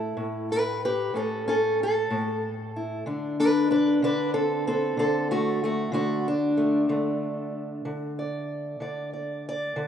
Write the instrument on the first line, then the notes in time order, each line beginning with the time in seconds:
steel-string acoustic guitar
Already playing: A2 A3 E4
0.17 A2
0.52 G4 B4
0.85 G4 B4
1.14 A2 C#4 A4
1.48 C#4 A4
1.83 A4
2.10 A2
2.76 E4
3.06 D3 D4
3.40 D4 B4
3.71 D4 B4
4.02 D3 D4 B4
4.34 C4 A4
4.67 C4 A4
4.97 D3 C4 A4
5.31 A3 F#4
5.64 A3 F#4
5.92 D3 A3 F#4
6.28 D4
6.57 A3
6.89 D3 A3
7.85 D3
8.19 D5
8.80 D3 D5
9.13 D5
9.49 D5
9.76 D3